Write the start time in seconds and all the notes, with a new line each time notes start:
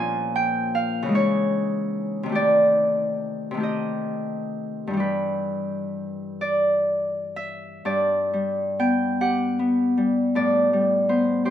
Already playing: A#2 F3 A#3 C#4 G#5
0.36 G5
0.75 F5
1.03 C#3 E3
1.09 G#3 D#4
1.15 C#5
2.23 C3 D#3
2.29 A3 G4
2.35 D5
3.51 C3 D#3
3.57 A3 G4
3.63 D#5
4.87 G2 E3
4.93 G3 G4
5.00 B4
6.41 D5
7.36 E5
7.85 G2 D5
8.33 G3
8.79 B3 G5
9.21 G4 F#5
9.59 B3
9.97 G3
10.35 A2 D5
10.73 G3
11.09 B3 C5
11.45 G4 C5